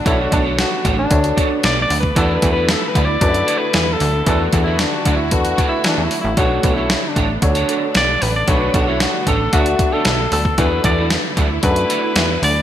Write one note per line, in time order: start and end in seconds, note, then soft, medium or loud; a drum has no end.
0.00 2.12 D3 medium
0.00 10.54 A3 medium
0.00 6.33 B3 medium
0.00 2.12 D4 medium
0.05 0.28 B1 loud
0.05 0.26 D4 medium
0.05 0.69 D4 medium
0.05 0.22 E4 medium
0.05 0.69 F#4 medium
0.05 0.69 A4 medium
0.05 0.27 A4 medium
0.05 0.69 C#5 medium
0.05 0.27 C#5 medium
0.05 kick loud
0.05 closed hi-hat medium
0.20 0.33 F#4 medium
0.31 0.65 B1 loud
0.31 0.45 D4 medium
0.31 0.44 A4 medium
0.31 0.43 C#5 medium
0.31 kick loud
0.31 closed hi-hat medium
0.44 0.56 D4 medium
0.44 0.57 A4 medium
0.44 0.58 C#5 medium
0.58 0.96 F#4 medium
0.58 muted clean electric guitar stroke soft
0.58 snare loud
0.58 closed hi-hat medium
0.71 muted clean electric guitar stroke medium
0.84 1.07 A1 loud
0.84 1.05 D4 medium
0.84 0.98 A4 medium
0.84 0.96 C#5 medium
0.84 kick loud
0.84 closed hi-hat medium
0.97 1.47 D4 loud
0.97 muted clean electric guitar stroke medium
1.11 1.33 D2 loud
1.11 1.74 D4 medium
1.11 1.74 F#4 medium
1.11 1.74 A4 medium
1.11 1.75 C#5 medium
1.11 muted clean electric guitar stroke soft
1.11 kick loud
1.11 closed hi-hat medium
1.24 muted clean electric guitar stroke soft
1.24 closed hi-hat medium
1.36 1.58 D4 medium
1.36 1.50 A4 medium
1.36 1.48 C#5 medium
1.36 kick loud
1.36 closed hi-hat medium
1.50 muted clean electric guitar stroke medium
1.64 1.86 B1 medium
1.64 1.81 D5 loud
1.64 snare loud
1.64 closed hi-hat medium
1.76 muted clean electric guitar stroke soft
1.82 1.98 D5 loud
1.90 2.12 D2 medium
1.90 open hi-hat medium
2.00 2.16 B4 medium
2.00 muted clean electric guitar stroke soft
2.00 kick medium
2.15 2.38 E2 loud
2.15 6.33 D3 medium
2.15 2.79 D4 medium
2.15 2.37 E4 loud
2.15 4.25 E4 medium
2.15 2.80 F#4 medium
2.15 2.37 A4 medium
2.15 2.80 A4 medium
2.15 2.36 A4 medium
2.15 2.80 B4 medium
2.15 2.38 D5 loud
2.15 kick loud
2.15 closed hi-hat medium
2.35 2.52 B4 medium
2.42 2.76 E2 loud
2.42 2.56 E4 medium
2.42 2.55 A4 medium
2.42 2.54 D5 medium
2.42 kick loud
2.42 closed hi-hat medium
2.52 2.72 B4 loud
2.52 2.69 D5 medium
2.57 2.68 E4 medium
2.57 2.68 A4 medium
2.69 2.89 A4 medium
2.69 muted clean electric guitar stroke soft
2.69 snare loud
2.69 closed hi-hat medium
2.82 muted clean electric guitar stroke medium
2.88 3.07 B4 loud
2.95 3.17 D2 medium
2.95 3.16 E4 medium
2.95 3.08 A4 medium
2.95 3.07 D5 medium
2.95 kick medium
2.95 closed hi-hat medium
3.05 3.60 D5 loud
3.05 muted clean electric guitar stroke soft
3.21 3.43 F#2 medium
3.21 3.85 D4 medium
3.21 3.85 F#4 medium
3.21 3.85 A4 medium
3.21 3.85 B4 medium
3.21 muted clean electric guitar stroke soft
3.21 kick loud
3.21 closed hi-hat medium
3.34 muted clean electric guitar stroke medium
3.34 closed hi-hat medium
3.47 3.68 E4 medium
3.47 3.60 A4 loud
3.47 3.59 D5 loud
3.47 closed hi-hat medium
3.58 3.94 B4 loud
3.58 muted clean electric guitar stroke soft
3.74 3.96 E2 medium
3.74 muted clean electric guitar stroke soft
3.74 snare loud
3.74 closed hi-hat medium
3.87 muted clean electric guitar stroke soft
3.93 4.27 A4 loud
4.00 4.23 D2 loud
4.00 open hi-hat medium
4.14 muted clean electric guitar stroke soft
4.26 4.49 E2 loud
4.26 4.90 D4 medium
4.26 4.48 E4 medium
4.26 6.35 F#4 medium
4.26 4.90 F#4 medium
4.26 4.90 A4 medium
4.26 4.48 A4 loud
4.26 4.44 A4 medium
4.26 4.91 B4 medium
4.26 4.48 D5 medium
4.26 kick loud
4.26 closed hi-hat medium
4.53 4.86 E2 loud
4.53 4.66 E4 medium
4.53 4.66 A4 medium
4.53 4.65 D5 medium
4.53 kick loud
4.53 closed hi-hat medium
4.63 4.82 E4 medium
4.63 4.79 A4 medium
4.63 4.79 D5 medium
4.68 4.78 E4 medium
4.79 5.18 D4 medium
4.79 snare loud
4.79 closed hi-hat medium
4.92 muted clean electric guitar stroke medium
5.05 5.33 D2 medium
5.05 5.27 E4 medium
5.05 5.19 A4 medium
5.05 5.18 D5 medium
5.05 kick medium
5.05 closed hi-hat medium
5.16 5.35 E4 medium
5.16 muted clean electric guitar stroke soft
5.31 5.54 E2 medium
5.31 5.95 D4 medium
5.31 5.95 F#4 medium
5.31 5.50 F#4 medium
5.31 5.95 A4 medium
5.31 5.96 B4 medium
5.31 muted clean electric guitar stroke soft
5.31 kick loud
5.31 closed hi-hat medium
5.45 muted clean electric guitar stroke soft
5.45 closed hi-hat medium
5.51 5.67 F#4 medium
5.58 5.79 E4 medium
5.58 5.71 A4 loud
5.58 5.70 D5 loud
5.58 kick loud
5.58 closed hi-hat medium
5.69 5.87 E4 medium
5.69 muted clean electric guitar stroke soft
5.84 5.96 E3 medium
5.84 6.05 D4 medium
5.84 muted clean electric guitar stroke medium
5.84 snare loud
5.84 closed hi-hat medium
5.97 6.09 E2 medium
5.97 muted clean electric guitar stroke soft
6.03 6.20 E4 medium
6.11 open hi-hat medium
6.21 6.35 A1 loud
6.21 6.37 E4 medium
6.21 muted clean electric guitar stroke medium
6.37 6.59 B1 loud
6.37 10.55 D3 medium
6.37 12.62 B3 medium
6.37 6.58 D4 medium
6.37 7.00 D4 medium
6.37 10.55 D4 medium
6.37 7.00 F#4 medium
6.37 6.75 F#4 medium
6.37 7.01 A4 medium
6.37 6.59 A4 medium
6.37 7.01 C#5 medium
6.37 6.59 C#5 loud
6.37 kick loud
6.37 closed hi-hat medium
6.63 6.97 B1 loud
6.63 6.77 D4 medium
6.63 6.76 A4 medium
6.63 6.75 C#5 medium
6.63 kick loud
6.63 closed hi-hat medium
6.74 7.10 E4 medium
6.74 6.89 A4 medium
6.74 6.90 C#5 medium
6.78 6.88 D4 medium
6.89 muted clean electric guitar stroke soft
6.89 snare loud
6.89 closed hi-hat medium
7.03 muted clean electric guitar stroke soft
7.09 7.34 D4 medium
7.16 7.38 A1 medium
7.16 7.37 D4 medium
7.16 7.29 A4 medium
7.16 7.28 C#5 loud
7.16 kick medium
7.16 closed hi-hat medium
7.29 muted clean electric guitar stroke soft
7.42 7.64 D2 medium
7.42 8.06 D4 medium
7.42 8.06 F#4 medium
7.42 8.06 A4 medium
7.42 8.06 C#5 medium
7.42 muted clean electric guitar stroke medium
7.42 kick loud
7.42 closed hi-hat medium
7.55 7.67 D4 medium
7.55 7.68 A4 medium
7.55 7.69 C#5 medium
7.55 closed hi-hat medium
7.68 7.85 D4 medium
7.68 7.82 A4 medium
7.68 7.81 C#5 medium
7.68 closed hi-hat medium
7.82 muted clean electric guitar stroke soft
7.95 8.17 B1 medium
7.95 8.24 D5 loud
7.95 muted clean electric guitar stroke soft
7.95 snare loud
7.95 closed hi-hat medium
8.08 muted clean electric guitar stroke soft
8.22 8.44 A1 medium
8.22 8.35 B4 loud
8.22 open hi-hat medium
8.35 8.50 D5 medium
8.35 muted clean electric guitar stroke medium
8.47 8.70 B1 loud
8.47 8.69 D4 medium
8.47 9.11 D4 medium
8.47 9.11 F#4 medium
8.47 9.11 A4 medium
8.47 8.69 A4 loud
8.47 8.74 B4 loud
8.47 9.11 C#5 medium
8.47 8.70 C#5 loud
8.47 kick loud
8.47 closed hi-hat medium
8.74 9.07 B1 medium
8.74 8.88 D4 medium
8.74 8.90 F#4 medium
8.74 8.87 A4 medium
8.74 8.86 C#5 medium
8.74 kick loud
8.74 closed hi-hat medium
8.87 8.99 D4 soft
8.87 9.03 E4 medium
8.87 9.00 A4 medium
8.87 9.01 C#5 medium
9.00 9.29 F#4 medium
9.00 muted clean electric guitar stroke soft
9.00 snare loud
9.00 closed hi-hat medium
9.13 muted clean electric guitar stroke medium
9.26 9.49 A1 loud
9.26 9.48 D4 medium
9.26 9.40 A4 medium
9.26 9.53 A4 loud
9.26 9.39 C#5 medium
9.26 kick medium
9.26 closed hi-hat medium
9.40 muted clean electric guitar stroke soft
9.52 9.75 D2 loud
9.52 9.74 D4 medium
9.52 10.16 D4 medium
9.52 10.17 F#4 medium
9.52 9.95 F#4 loud
9.52 9.66 A4 medium
9.52 10.17 A4 medium
9.52 9.65 C#5 medium
9.52 10.17 E5 medium
9.52 kick loud
9.52 closed hi-hat medium
9.66 muted clean electric guitar stroke soft
9.66 closed hi-hat medium
9.79 muted clean electric guitar stroke soft
9.79 kick loud
9.79 closed hi-hat medium
9.92 10.05 D4 medium
9.92 10.32 A4 medium
9.92 10.05 A4 medium
9.92 10.06 C#5 medium
10.05 10.28 B1 loud
10.05 snare loud
10.05 closed hi-hat medium
10.19 muted clean electric guitar stroke medium
10.32 10.54 D2 medium
10.32 10.61 A4 loud
10.32 open hi-hat medium
10.45 muted clean electric guitar stroke soft
10.45 kick medium
10.58 10.80 E2 loud
10.58 12.62 D3 medium
10.58 12.62 A3 medium
10.58 11.22 D4 medium
10.58 12.62 E4 medium
10.58 10.79 E4 medium
10.58 11.22 F#4 medium
10.58 11.22 A4 medium
10.58 10.80 A4 medium
10.58 11.22 B4 medium
10.58 10.84 B4 loud
10.58 10.80 D5 medium
10.58 kick loud
10.58 closed hi-hat medium
10.84 11.17 E2 loud
10.84 10.98 E4 medium
10.84 10.98 A4 medium
10.84 11.09 D5 medium
10.84 10.96 D5 medium
10.84 kick loud
10.84 closed hi-hat medium
10.98 11.10 E4 medium
10.98 11.10 A4 medium
10.98 11.11 D5 medium
11.10 muted clean electric guitar stroke soft
11.10 snare loud
11.10 closed hi-hat medium
11.24 muted clean electric guitar stroke soft
11.37 11.59 D2 medium
11.37 11.58 E4 medium
11.37 11.50 A4 loud
11.37 11.49 D5 loud
11.37 kick loud
11.37 closed hi-hat medium
11.50 muted clean electric guitar stroke soft
11.63 11.85 F#2 loud
11.63 12.27 D4 medium
11.63 12.27 F#4 medium
11.63 11.70 G#4 medium
11.63 12.27 B4 medium
11.63 12.39 B4 loud
11.63 muted clean electric guitar stroke soft
11.63 kick loud
11.63 closed hi-hat medium
11.70 12.30 A4 medium
11.76 muted clean electric guitar stroke soft
11.76 closed hi-hat medium
11.89 12.11 E4 medium
11.89 12.02 A4 medium
11.89 12.01 D5 loud
11.89 closed hi-hat medium
12.02 muted clean electric guitar stroke soft
12.15 12.38 E2 loud
12.15 muted clean electric guitar stroke soft
12.15 snare loud
12.15 closed hi-hat medium
12.28 muted clean electric guitar stroke soft
12.42 12.62 D2 medium
12.42 12.62 D5 loud
12.42 open hi-hat medium
12.55 muted clean electric guitar stroke soft